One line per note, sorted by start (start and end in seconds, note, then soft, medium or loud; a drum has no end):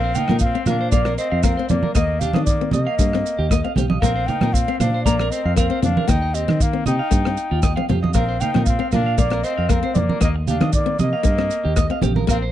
0.00 0.14 A#1 medium
0.00 0.12 A#3 medium
0.00 0.19 C4 medium
0.00 0.11 C5 medium
0.00 0.17 F5 loud
0.15 0.42 D#4 medium
0.15 0.24 F5 medium
0.15 0.40 G5 loud
0.15 closed hi-hat soft
0.15 low conga medium
0.15 maracas medium
0.28 0.53 A#2 medium
0.28 0.51 A#3 medium
0.28 0.37 A#4 medium
0.28 cross-stick medium
0.28 high conga medium
0.39 0.65 F5 medium
0.39 kick medium
0.39 maracas medium
0.45 0.67 C4 medium
0.55 0.76 C4 medium
0.55 0.63 F5 medium
0.66 0.91 A#2 medium
0.66 0.92 D4 medium
0.66 0.76 A#4 medium
0.66 0.91 F5 medium
0.66 cross-stick medium
0.66 closed hi-hat soft
0.66 high conga medium
0.66 low conga medium
0.66 maracas medium
0.81 0.88 C5 medium
0.91 1.16 A#1 medium
0.91 1.04 A#3 medium
0.91 1.18 A#3 medium
0.91 1.16 D5 medium
0.91 1.01 F5 medium
0.91 kick medium
0.91 maracas medium
1.05 1.27 C4 medium
1.05 1.14 A#4 medium
1.05 cross-stick medium
1.18 1.46 C4 medium
1.18 1.27 C5 medium
1.18 1.45 D#5 medium
1.18 closed hi-hat medium
1.18 maracas medium
1.32 1.56 F2 medium
1.32 1.39 F5 medium
1.43 1.56 A#3 medium
1.43 1.70 C4 medium
1.43 1.52 A#4 medium
1.43 1.68 F5 medium
1.43 kick medium
1.43 cross-stick medium
1.43 maracas medium
1.57 1.69 C4 medium
1.57 1.65 C5 medium
1.69 1.82 F2 medium
1.69 1.95 A#3 medium
1.69 1.91 C4 medium
1.69 1.93 D5 medium
1.69 closed hi-hat soft
1.69 high conga medium
1.69 low conga medium
1.69 maracas medium
1.83 1.91 A#4 medium
1.83 high conga medium
1.95 2.32 D#2 medium
1.95 2.24 A#3 medium
1.95 2.17 A#3 loud
1.95 2.21 D#5 loud
1.95 2.04 D#5 medium
1.95 kick medium
1.95 cross-stick medium
1.95 maracas medium
2.20 2.48 D4 medium
2.20 2.30 G4 medium
2.20 2.44 F5 medium
2.20 closed hi-hat medium
2.20 low conga medium
2.20 maracas medium
2.33 2.70 D#3 medium
2.33 2.57 C4 medium
2.33 2.42 D#5 medium
2.33 cross-stick medium
2.33 high conga medium
2.45 2.72 A#3 medium
2.45 2.70 D5 medium
2.45 kick medium
2.45 maracas medium
2.61 2.82 C4 medium
2.71 2.86 C3 medium
2.71 3.72 D#5 medium
2.71 2.82 D#5 medium
2.71 closed hi-hat soft
2.71 high conga medium
2.71 low conga medium
2.71 maracas medium
2.76 3.74 A#3 medium
2.87 2.94 F5 medium
2.99 3.23 G2 medium
2.99 3.11 A#3 medium
2.99 kick medium
2.99 maracas loud
3.13 3.35 C4 medium
3.13 cross-stick medium
3.26 closed hi-hat soft
3.26 maracas medium
3.39 3.62 D#2 medium
3.39 3.46 G4 medium
3.51 3.63 A#3 medium
3.51 3.59 D#5 medium
3.51 kick medium
3.51 cross-stick medium
3.51 maracas medium
3.64 3.74 C4 medium
3.64 3.72 F5 medium
3.76 4.00 B1 medium
3.76 3.98 C4 medium
3.76 3.85 G4 medium
3.76 closed hi-hat soft
3.76 high conga medium
3.76 low conga medium
3.76 maracas medium
3.90 3.98 D#5 medium
3.90 high conga medium
4.01 4.26 A#1 medium
4.01 4.24 A#3 medium
4.01 4.31 C4 medium
4.01 4.11 A#4 medium
4.01 4.28 F5 loud
4.01 kick medium
4.01 cross-stick medium
4.01 maracas loud
4.16 4.23 C5 medium
4.27 4.55 D#4 medium
4.27 4.37 F5 medium
4.27 4.55 G5 medium
4.27 closed hi-hat medium
4.27 low conga medium
4.41 4.66 A#2 medium
4.41 4.64 C4 medium
4.41 4.50 A#4 medium
4.41 cross-stick medium
4.41 high conga medium
4.53 4.80 C4 medium
4.53 4.79 F5 medium
4.53 kick medium
4.53 maracas loud
4.68 4.89 C4 medium
4.68 4.76 F5 medium
4.79 5.03 A#2 medium
4.79 5.05 D4 medium
4.79 4.89 C5 medium
4.79 5.03 F5 medium
4.79 cross-stick medium
4.79 closed hi-hat soft
4.79 high conga medium
4.79 low conga medium
4.79 maracas medium
4.94 5.02 C5 medium
5.04 5.30 A#1 loud
5.04 5.34 A#3 medium
5.04 5.17 A#3 medium
5.04 5.32 D5 medium
5.04 5.14 A#5 medium
5.04 kick medium
5.04 maracas loud
5.19 5.41 C4 medium
5.19 5.28 A#4 medium
5.19 cross-stick medium
5.30 5.58 C4 medium
5.30 5.41 C5 medium
5.30 5.56 D#5 medium
5.30 closed hi-hat soft
5.30 maracas medium
5.45 5.69 F2 medium
5.45 5.53 F5 medium
5.56 5.68 A#3 medium
5.56 5.82 C4 medium
5.56 5.66 A#4 medium
5.56 5.81 F5 medium
5.56 kick medium
5.56 cross-stick medium
5.56 maracas loud
5.70 5.80 C4 medium
5.70 5.79 C5 medium
5.82 5.96 F2 medium
5.82 6.04 C4 medium
5.82 6.11 D4 medium
5.82 6.09 F5 medium
5.82 closed hi-hat medium
5.82 high conga medium
5.82 low conga medium
5.82 maracas medium
5.97 6.05 A#4 medium
5.97 high conga medium
6.08 6.45 D#2 medium
6.08 6.29 A#3 medium
6.08 6.37 D#4 medium
6.08 6.17 D#5 medium
6.08 6.36 G5 loud
6.08 kick medium
6.08 cross-stick medium
6.08 low conga medium
6.08 maracas loud
6.22 6.30 D#5 medium
6.34 6.64 C4 medium
6.34 6.43 G4 medium
6.34 6.64 D#5 medium
6.34 closed hi-hat medium
6.34 maracas medium
6.48 6.84 D#3 medium
6.48 muted nylon-string guitar stroke medium
6.48 cross-stick medium
6.48 high conga medium
6.60 6.86 A#3 medium
6.60 6.87 F5 medium
6.60 kick medium
6.60 maracas loud
6.73 6.95 C4 medium
6.86 6.99 C3 medium
6.86 7.86 D#4 medium
6.86 6.95 D#5 medium
6.86 7.86 G5 medium
6.86 closed hi-hat soft
6.86 low conga medium
6.86 maracas medium
6.99 7.07 F5 medium
7.11 7.36 G2 medium
7.11 7.23 A#3 medium
7.11 kick medium
7.11 maracas loud
7.25 7.47 C4 medium
7.25 cross-stick medium
7.37 closed hi-hat soft
7.37 maracas medium
7.51 7.75 D#2 medium
7.51 7.59 F4 medium
7.62 7.75 A#3 medium
7.62 7.72 D#5 medium
7.62 kick medium
7.62 cross-stick medium
7.62 maracas medium
7.76 7.87 C4 medium
7.76 7.84 F5 medium
7.76 high conga soft
7.89 8.14 F2 medium
7.89 8.11 C4 medium
7.89 7.99 G4 medium
7.89 closed hi-hat soft
7.89 high conga medium
7.89 low conga medium
8.03 8.11 D#5 medium
8.03 high conga medium
8.13 8.39 A#1 medium
8.13 8.37 A#3 medium
8.13 8.43 C4 medium
8.13 8.24 A#4 medium
8.13 8.42 F5 loud
8.13 kick medium
8.13 cross-stick medium
8.13 maracas medium
8.29 8.36 C5 medium
8.41 8.67 D#4 medium
8.41 8.50 F5 medium
8.41 8.65 G5 loud
8.41 closed hi-hat soft
8.41 low conga medium
8.41 maracas medium
8.54 8.79 A#2 medium
8.54 8.76 C4 medium
8.54 8.63 A#4 medium
8.54 cross-stick medium
8.54 high conga medium
8.65 8.92 C4 medium
8.65 8.90 F5 medium
8.65 kick medium
8.65 maracas medium
8.79 9.01 C4 medium
8.79 8.88 F5 medium
8.91 9.17 A#2 loud
8.91 9.22 D4 medium
8.91 9.01 A#4 medium
8.91 9.20 F5 medium
8.91 cross-stick medium
8.91 closed hi-hat soft
8.91 high conga medium
8.91 low conga medium
8.91 maracas medium
9.06 9.14 F5 medium
9.18 9.42 A#1 loud
9.18 9.30 A#3 medium
9.18 9.46 A#3 medium
9.18 9.45 D5 medium
9.18 9.27 F5 medium
9.18 kick medium
9.18 maracas medium
9.30 9.52 C4 medium
9.30 9.40 A#4 medium
9.30 cross-stick medium
9.43 9.72 C4 medium
9.43 9.53 C5 medium
9.43 9.71 D#5 medium
9.43 closed hi-hat soft
9.43 maracas medium
9.58 9.82 F2 medium
9.58 9.66 F5 medium
9.69 9.81 A#3 medium
9.69 10.00 C4 medium
9.69 9.79 A#4 medium
9.69 9.96 F5 medium
9.69 kick medium
9.69 cross-stick medium
9.69 maracas medium
9.83 9.93 C4 medium
9.83 9.92 C5 medium
9.94 10.08 F2 medium
9.94 10.17 C4 medium
9.94 10.21 D5 medium
9.94 closed hi-hat soft
9.94 high conga medium
9.94 low conga medium
9.94 maracas medium
9.99 10.23 A#3 medium
10.09 10.17 A#4 medium
10.09 high conga medium
10.21 10.59 D#2 medium
10.21 10.42 A#3 medium
10.21 10.36 A#3 medium
10.21 10.30 D#5 medium
10.21 10.28 D#5 medium
10.21 kick medium
10.21 cross-stick medium
10.21 maracas medium
10.36 muted clean electric guitar stroke medium
10.47 10.73 D4 medium
10.47 10.57 G4 medium
10.47 10.72 F5 medium
10.47 closed hi-hat medium
10.47 low conga medium
10.47 maracas medium
10.61 10.97 D#3 medium
10.61 10.82 C4 medium
10.61 10.69 D#5 medium
10.61 cross-stick medium
10.61 high conga medium
10.73 10.98 D5 medium
10.73 kick medium
10.73 maracas medium
10.77 11.00 A#3 medium
10.86 11.08 C4 medium
10.99 11.13 C3 medium
10.99 11.08 D#5 medium
10.99 12.00 D#5 medium
10.99 closed hi-hat soft
10.99 high conga medium
10.99 maracas medium
11.04 12.01 A#3 medium
11.13 11.21 F5 medium
11.23 11.49 G2 medium
11.23 11.36 A#3 medium
11.23 kick loud
11.23 maracas medium
11.38 11.60 C4 medium
11.38 cross-stick medium
11.51 closed hi-hat medium
11.51 maracas medium
11.65 11.89 D#2 medium
11.65 11.73 G4 medium
11.76 11.88 A#3 medium
11.76 11.86 D#5 medium
11.76 kick medium
11.76 cross-stick medium
11.76 maracas loud
11.90 12.00 C4 medium
11.90 11.99 F5 medium
12.02 12.27 A#1 loud
12.02 12.24 C4 medium
12.02 12.12 G4 medium
12.02 closed hi-hat medium
12.02 high conga medium
12.02 low conga medium
12.02 maracas medium
12.16 12.24 A#4 medium
12.16 high conga medium
12.27 12.52 A#1 medium
12.27 12.49 A#3 medium
12.27 12.38 A#4 loud
12.27 12.36 F5 loud
12.27 kick medium
12.27 cross-stick medium
12.27 maracas medium
12.32 12.43 C4 medium
12.42 12.50 C5 medium